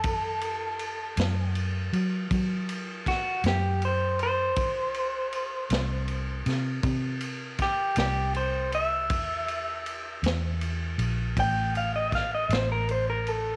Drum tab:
RD |xxxxxxxxxxxx|xxxxxxxxxxxx|xxxxxxxxxxxx|
SD |---o----oo--|---o-o--oo--|---o----oo--|
BD |o-----o-o---|o-----o-o---|o-----o-o---|